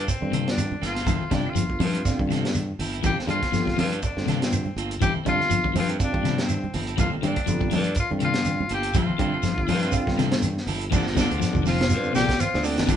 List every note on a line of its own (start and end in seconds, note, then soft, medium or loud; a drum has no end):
0.00 0.11 C4 soft
0.00 0.11 D4 medium
0.00 0.10 F4 soft
0.00 0.10 A4 soft
0.08 0.47 C4 medium
0.08 kick medium
0.08 closed hi-hat medium
0.08 shekere medium
0.20 0.74 G2 medium
0.20 0.69 D3 medium
0.20 0.69 G3 medium
0.20 0.70 C4 medium
0.20 0.70 F4 medium
0.20 high conga medium
0.32 0.47 C3 medium
0.32 0.48 A#3 medium
0.32 0.48 C4 medium
0.32 0.49 F4 medium
0.32 0.49 A4 medium
0.32 closed hi-hat medium
0.32 high conga medium
0.32 claves medium
0.32 shekere soft
0.48 0.82 D4 medium
0.48 snare medium
0.48 closed hi-hat soft
0.58 closed hi-hat medium
0.58 high conga medium
0.58 claves medium
0.58 shekere medium
0.72 low conga medium
0.81 1.04 G1 medium
0.81 0.96 A#3 soft
0.81 0.95 C4 medium
0.81 0.95 F4 medium
0.81 0.94 A4 medium
0.81 snare soft
0.81 closed hi-hat medium
0.81 high conga medium
0.81 shekere soft
0.86 1.35 F4 medium
0.95 1.05 C4 soft
0.95 1.07 F4 soft
0.95 1.06 A4 soft
0.95 snare soft
0.95 closed hi-hat medium
1.06 1.18 G1 medium
1.06 1.22 E3 medium
1.06 1.23 F3 medium
1.06 1.23 C4 medium
1.06 1.23 E4 medium
1.06 1.23 A4 medium
1.06 kick medium
1.06 closed hi-hat medium
1.06 low conga medium
1.06 claves medium
1.06 shekere medium
1.21 muted fingered electric bass stroke soft
1.21 high conga medium
1.30 1.43 G2 medium
1.30 1.46 C3 medium
1.30 1.62 D3 medium
1.30 1.47 F3 medium
1.30 1.62 G3 medium
1.30 1.47 C4 soft
1.30 1.63 C4 medium
1.30 1.50 D4 medium
1.30 1.47 E4 medium
1.30 1.63 F4 medium
1.30 1.48 A4 medium
1.30 kick medium
1.30 snare soft
1.30 closed hi-hat soft
1.30 high conga medium
1.30 shekere soft
1.46 2.21 F4 medium
1.46 claves medium
1.55 1.82 G1 medium
1.55 1.64 F3 medium
1.55 closed hi-hat medium
1.55 shekere medium
1.70 kick medium
1.80 2.02 G2 medium
1.80 1.95 F3 medium
1.80 1.97 F3 soft
1.80 1.97 E4 medium
1.80 1.97 A4 medium
1.80 muted clean electric guitar stroke medium
1.80 open hi-hat medium
1.80 high conga medium
1.80 low conga medium
1.80 shekere soft
1.93 1.99 C4 medium
1.93 2.00 F4 medium
1.93 closed hi-hat medium
1.93 claves medium
2.05 2.53 D3 medium
2.05 2.54 G3 medium
2.05 2.54 C4 medium
2.05 2.54 F4 loud
2.05 kick medium
2.05 snare soft
2.05 closed hi-hat medium
2.05 shekere medium
2.19 2.71 G2 medium
2.19 kick medium
2.19 high conga medium
2.29 2.44 C3 medium
2.29 2.46 F3 medium
2.29 2.47 C4 medium
2.29 2.47 E4 medium
2.29 2.47 A4 medium
2.29 snare soft
2.29 closed hi-hat soft
2.29 high conga medium
2.29 claves medium
2.29 shekere soft
2.45 snare medium
2.45 closed hi-hat soft
2.54 closed hi-hat medium
2.54 high conga medium
2.54 claves medium
2.54 shekere medium
2.79 3.01 G1 medium
2.79 2.93 F3 medium
2.79 2.94 C4 medium
2.79 2.93 E4 medium
2.79 2.92 A4 medium
2.79 open hi-hat medium
2.79 high conga medium
2.79 shekere soft
2.93 3.03 C4 soft
2.93 3.04 E4 soft
2.93 3.03 A4 soft
2.93 closed hi-hat soft
3.03 3.16 G1 medium
3.03 3.28 D3 medium
3.03 3.18 E3 medium
3.03 3.28 G3 medium
3.03 3.20 A#3 medium
3.03 3.20 C4 medium
3.03 3.28 C4 medium
3.03 3.20 F4 medium
3.03 3.29 F4 medium
3.03 3.17 G4 loud
3.03 3.20 A4 medium
3.03 kick medium
3.03 closed hi-hat medium
3.03 low conga medium
3.03 claves medium
3.03 shekere medium
3.18 muted fingered electric bass stroke soft
3.18 snare soft
3.27 3.40 G2 medium
3.27 3.43 D3 medium
3.27 3.45 A#3 medium
3.27 3.45 C4 medium
3.27 3.45 F4 medium
3.27 3.75 F4 loud
3.27 3.45 A4 medium
3.27 closed hi-hat soft
3.27 high conga medium
3.27 shekere soft
3.43 kick medium
3.43 snare soft
3.43 closed hi-hat soft
3.43 claves medium
3.52 3.79 G1 medium
3.52 3.84 D3 medium
3.52 3.61 F3 medium
3.52 3.85 G3 medium
3.52 3.85 C4 medium
3.52 3.85 F4 medium
3.52 snare soft
3.52 closed hi-hat medium
3.52 shekere medium
3.65 3.73 G3 medium
3.65 kick medium
3.65 snare soft
3.65 high conga medium
3.77 3.99 G2 medium
3.77 3.92 F3 medium
3.77 3.92 A#3 soft
3.77 3.92 C4 soft
3.77 3.92 F4 medium
3.77 3.90 F4 medium
3.77 3.91 A4 medium
3.77 open hi-hat medium
3.77 high conga medium
3.77 low conga medium
3.77 shekere soft
3.92 4.06 C4 soft
3.92 4.06 F4 soft
3.92 4.06 A4 medium
3.92 closed hi-hat medium
3.92 claves medium
4.02 4.40 D4 medium
4.02 kick medium
4.02 closed hi-hat medium
4.02 shekere medium
4.16 4.69 G2 medium
4.16 4.65 D3 medium
4.16 4.65 G3 medium
4.16 4.65 C4 medium
4.16 4.66 F4 medium
4.16 snare soft
4.26 4.41 C3 medium
4.26 4.44 A#3 medium
4.26 4.44 C4 medium
4.26 4.44 F4 medium
4.26 4.44 A4 medium
4.26 snare soft
4.26 closed hi-hat soft
4.26 high conga medium
4.26 claves medium
4.26 shekere soft
4.42 4.75 C4 medium
4.42 snare medium
4.42 closed hi-hat medium
4.52 closed hi-hat medium
4.52 high conga medium
4.52 claves medium
4.52 shekere medium
4.66 low conga medium
4.76 4.98 G1 medium
4.76 4.93 A#3 medium
4.76 4.93 C4 medium
4.76 4.93 F4 medium
4.76 4.94 A4 medium
4.76 closed hi-hat medium
4.76 shekere soft
4.91 closed hi-hat medium
5.01 5.13 G1 medium
5.01 5.16 E3 medium
5.01 5.18 F3 medium
5.01 5.18 C4 medium
5.01 5.18 E4 medium
5.01 5.13 G4 loud
5.01 5.18 A4 medium
5.01 kick medium
5.01 closed hi-hat medium
5.01 low conga medium
5.01 claves medium
5.01 shekere medium
5.15 muted fingered electric bass stroke soft
5.15 high conga medium
5.25 5.38 G2 medium
5.25 5.40 D3 medium
5.25 5.57 D3 medium
5.25 5.42 F3 medium
5.25 5.57 G3 medium
5.25 5.57 C4 medium
5.25 5.43 E4 medium
5.25 5.58 F4 medium
5.25 5.73 F4 loud
5.25 5.43 A4 medium
5.25 kick soft
5.25 closed hi-hat soft
5.25 high conga medium
5.25 shekere soft
5.40 snare soft
5.40 claves medium
5.50 5.77 G1 medium
5.50 5.58 F3 medium
5.50 closed hi-hat medium
5.50 shekere medium
5.64 5.71 G3 medium
5.64 kick medium
5.64 high conga medium
5.74 5.97 G2 medium
5.74 5.89 F3 medium
5.74 5.89 F3 soft
5.74 5.89 C4 medium
5.74 5.89 E4 medium
5.74 5.88 A4 medium
5.74 open hi-hat medium
5.74 high conga medium
5.74 low conga medium
5.74 shekere soft
5.79 5.89 F4 medium
5.88 5.94 C4 medium
5.88 6.04 C4 soft
5.88 6.03 E4 soft
5.88 5.95 F4 medium
5.88 6.03 A4 medium
5.88 closed hi-hat medium
5.88 claves medium
5.98 6.48 D3 medium
5.98 6.48 G3 medium
5.98 6.48 C4 medium
5.98 6.48 F4 medium
5.98 kick medium
5.98 closed hi-hat medium
5.98 shekere medium
6.04 6.44 D4 medium
6.13 6.65 G2 medium
6.13 kick medium
6.13 high conga medium
6.23 6.39 C3 medium
6.23 6.41 F3 medium
6.23 6.41 C4 medium
6.23 6.41 E4 medium
6.23 6.41 A4 medium
6.23 snare soft
6.23 closed hi-hat soft
6.23 high conga medium
6.23 claves medium
6.23 shekere soft
6.38 snare medium
6.38 closed hi-hat soft
6.43 6.76 C4 medium
6.49 closed hi-hat medium
6.49 high conga medium
6.49 claves medium
6.49 shekere medium
6.64 low conga medium
6.74 6.95 G1 medium
6.74 6.88 F3 medium
6.74 6.88 C4 medium
6.74 6.88 E4 medium
6.74 6.87 A4 medium
6.74 open hi-hat medium
6.74 high conga medium
6.74 shekere soft
6.87 6.98 C4 soft
6.87 6.99 E4 soft
6.87 6.98 A4 soft
6.87 closed hi-hat soft
6.97 7.10 G1 loud
6.97 7.22 D3 medium
6.97 7.13 E3 medium
6.97 7.23 G3 medium
6.97 7.15 A#3 medium
6.97 7.23 C4 medium
6.97 7.15 C4 medium
6.97 7.23 F4 medium
6.97 7.15 F4 medium
6.97 7.11 F4 medium
6.97 7.15 A4 medium
6.97 kick medium
6.97 closed hi-hat medium
6.97 low conga medium
6.97 claves medium
6.97 shekere medium
7.12 muted fingered electric bass stroke soft
7.12 high conga medium
7.22 7.35 G2 medium
7.22 7.38 D3 medium
7.22 7.39 A#3 medium
7.22 7.39 C4 medium
7.22 7.40 F4 medium
7.22 7.40 A4 medium
7.22 closed hi-hat soft
7.22 high conga medium
7.22 shekere soft
7.27 7.71 D4 medium
7.36 kick medium
7.36 closed hi-hat soft
7.36 claves medium
7.46 7.75 G1 medium
7.46 7.78 D3 medium
7.46 7.55 F3 medium
7.46 7.78 G3 medium
7.46 7.79 C4 medium
7.46 7.79 F4 medium
7.46 closed hi-hat medium
7.46 shekere medium
7.61 7.67 G3 medium
7.61 kick medium
7.61 high conga medium
7.71 7.94 G2 medium
7.71 7.87 F3 medium
7.71 7.88 A#3 soft
7.71 7.89 F4 soft
7.71 7.89 A4 medium
7.71 muted clean electric guitar stroke soft
7.71 open hi-hat medium
7.71 high conga medium
7.71 low conga medium
7.71 shekere soft
7.75 7.97 D4 medium
7.84 closed hi-hat medium
7.84 claves medium
7.95 kick medium
7.95 closed hi-hat medium
7.95 shekere medium
8.00 8.10 F4 medium
8.10 8.63 G2 medium
8.10 8.58 D3 medium
8.10 8.59 G3 medium
8.10 8.59 C4 medium
8.10 8.59 F4 medium
8.10 high conga medium
8.20 8.36 C3 medium
8.20 8.37 A#3 medium
8.20 8.38 C4 medium
8.20 8.69 F4 medium
8.20 8.38 A4 medium
8.20 muted clean electric guitar stroke medium
8.20 closed hi-hat soft
8.20 high conga medium
8.20 claves medium
8.20 shekere soft
8.34 snare medium
8.34 closed hi-hat soft
8.45 closed hi-hat medium
8.45 high conga medium
8.45 claves medium
8.45 shekere medium
8.61 low conga medium
8.69 8.92 G1 medium
8.69 8.85 A#3 medium
8.69 8.85 C4 medium
8.69 8.84 F4 medium
8.69 8.83 A4 medium
8.69 closed hi-hat soft
8.69 shekere soft
8.74 8.95 G4 medium
8.83 8.95 F4 soft
8.83 8.95 A4 soft
8.83 closed hi-hat medium
8.94 9.07 G1 loud
8.94 9.10 F3 medium
8.94 9.11 F3 medium
8.94 9.12 C4 medium
8.94 9.12 E4 medium
8.94 9.12 A4 medium
8.94 kick medium
8.94 closed hi-hat medium
8.94 low conga medium
8.94 claves medium
8.94 shekere medium
8.98 10.40 F4 medium
9.09 muted fingered electric bass stroke soft
9.09 high conga medium
9.18 9.32 G2 loud
9.18 9.34 D3 medium
9.18 9.50 D3 medium
9.18 9.36 F3 medium
9.18 9.50 G3 medium
9.18 9.51 C4 medium
9.18 9.36 C4 medium
9.18 9.36 E4 medium
9.18 9.51 F4 medium
9.18 9.37 A4 medium
9.18 kick medium
9.18 closed hi-hat soft
9.18 high conga medium
9.18 shekere soft
9.34 claves medium
9.43 9.71 G1 medium
9.43 9.52 F3 medium
9.43 snare soft
9.43 closed hi-hat medium
9.43 shekere medium
9.58 kick medium
9.58 high conga medium
9.68 9.90 G2 medium
9.68 9.83 F3 medium
9.68 9.83 C4 medium
9.68 9.82 E4 medium
9.68 9.81 A4 medium
9.68 open hi-hat medium
9.68 high conga loud
9.68 low conga medium
9.68 shekere soft
9.82 9.88 C4 medium
9.82 9.97 C4 soft
9.82 9.97 E4 medium
9.82 9.88 F4 medium
9.82 9.97 A4 medium
9.82 closed hi-hat medium
9.82 claves medium
9.91 10.41 D3 loud
9.91 10.41 G3 medium
9.91 10.41 C4 medium
9.91 10.42 F4 loud
9.91 kick medium
9.91 closed hi-hat medium
9.91 shekere medium
10.07 10.59 G2 medium
10.07 kick medium
10.07 snare soft
10.07 high conga medium
10.18 10.33 C3 medium
10.18 10.34 F3 medium
10.18 10.34 C4 medium
10.18 10.35 E4 medium
10.18 10.35 A4 medium
10.18 snare soft
10.18 closed hi-hat medium
10.18 high conga medium
10.18 claves medium
10.18 shekere soft
10.32 snare medium
10.32 closed hi-hat medium
10.42 closed hi-hat medium
10.42 high conga medium
10.42 claves medium
10.42 shekere medium
10.57 snare soft
10.67 10.88 G1 medium
10.67 10.83 F3 medium
10.67 10.84 C4 medium
10.67 10.84 E4 medium
10.67 10.84 A4 medium
10.67 open hi-hat medium
10.67 high conga medium
10.67 shekere soft
10.81 closed hi-hat soft
10.91 11.25 G1 medium
10.91 11.29 D3 medium
10.91 11.06 E3 medium
10.91 11.29 G3 medium
10.91 11.08 A#3 medium
10.91 11.30 C4 medium
10.91 11.08 C4 medium
10.91 11.08 F4 medium
10.91 11.30 F4 medium
10.91 11.08 A4 medium
10.91 kick medium
10.91 crash medium
10.91 high conga soft
10.91 low conga medium
10.91 claves medium
10.91 shekere medium
10.95 11.06 D3 medium
10.95 11.06 D4 medium
11.07 snare soft
11.07 shekere soft
11.15 11.31 D3 medium
11.15 11.30 A#3 medium
11.15 11.30 C4 medium
11.15 11.29 F4 medium
11.15 11.31 A4 medium
11.15 kick medium
11.15 snare medium
11.15 closed hi-hat soft
11.15 high conga medium
11.15 low conga medium
11.15 shekere medium
11.19 11.64 D3 medium
11.19 11.64 D4 medium
11.30 11.40 D2 medium
11.30 11.45 C4 soft
11.30 11.44 F4 soft
11.30 closed hi-hat soft
11.30 claves medium
11.30 shekere soft
11.40 11.48 F3 medium
11.40 snare soft
11.40 closed hi-hat medium
11.40 shekere medium
11.53 11.93 F1 medium
11.53 11.60 G3 medium
11.53 kick medium
11.53 high conga medium
11.53 shekere soft
11.63 11.79 D3 medium
11.63 11.79 F3 medium
11.63 11.79 G3 medium
11.63 11.82 A#3 medium
11.63 11.79 C4 medium
11.63 11.82 C4 medium
11.63 11.79 F4 medium
11.63 11.82 F4 medium
11.63 11.82 A4 medium
11.63 open hi-hat medium
11.63 high conga medium
11.63 shekere medium
11.68 12.13 F3 medium
11.68 12.13 F4 medium
11.80 snare medium
11.80 closed hi-hat medium
11.80 low conga medium
11.80 claves medium
11.80 shekere soft
11.88 12.12 G2 medium
11.88 11.96 C4 medium
11.88 11.97 F4 medium
11.88 closed hi-hat medium
11.88 shekere loud
12.02 12.33 D3 medium
12.02 12.33 G3 medium
12.02 12.33 C4 medium
12.02 12.33 F4 medium
12.02 shekere soft
12.13 12.27 A#1 medium
12.13 12.29 C3 medium
12.13 12.41 G3 medium
12.13 12.31 A#3 medium
12.13 12.31 C4 medium
12.13 12.31 F4 medium
12.13 12.42 G4 loud
12.13 12.31 A4 medium
12.13 snare medium
12.13 closed hi-hat medium
12.13 claves medium
12.13 shekere medium
12.29 kick medium
12.29 snare medium
12.29 closed hi-hat medium
12.29 shekere soft
12.39 12.66 F3 medium
12.39 12.65 F4 loud
12.39 muted fingered electric bass stroke soft
12.39 closed hi-hat medium
12.39 high conga medium
12.39 claves medium
12.39 shekere medium
12.54 12.76 D2 loud
12.54 snare soft
12.54 shekere soft
12.63 12.88 D3 medium
12.63 12.96 D3 medium
12.63 12.88 G3 medium
12.63 12.80 A#3 medium
12.63 12.89 C4 medium
12.63 12.80 C4 medium
12.63 12.96 D4 medium
12.63 12.80 F4 medium
12.63 12.89 F4 medium
12.63 12.80 A4 medium
12.63 open hi-hat medium
12.63 shekere medium
12.78 12.87 G1 medium
12.78 snare medium
12.78 closed hi-hat medium
12.78 high conga loud
12.78 shekere soft
12.87 12.96 G1 loud
12.87 12.96 E3 medium
12.87 12.96 F3 medium
12.87 12.96 C4 medium
12.87 12.96 E4 medium
12.87 12.96 A4 medium
12.87 kick loud
12.87 closed hi-hat medium
12.87 high conga soft
12.87 low conga medium
12.87 claves medium
12.87 shekere medium